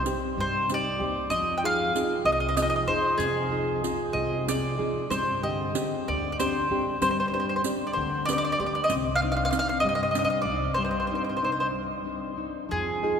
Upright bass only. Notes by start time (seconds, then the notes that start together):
0.38 G2
1.00 D#2
1.30 F2
2.25 C2
2.87 F2
3.18 F2
4.14 C2
4.79 F2
5.11 G2
6.08 D2
6.71 G2
7.02 G2
7.97 D2
8.59 D2
8.90 C2
9.83 G2
10.45 C2
12.72 F2